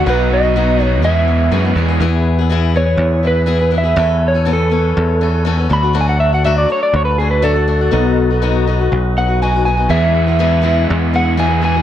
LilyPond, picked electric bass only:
\new Staff \with { instrumentName = "Picked electric bass" } { \clef bass \time 4/4 \key e \major \tempo 4 = 122 b,,2 e,4 fis,8 e,8 | e,2 e,2 | e,2 e,4. d,8~ | d,4. r8 d,2 |
b,,2 b,,2 | e,2 e,2 | }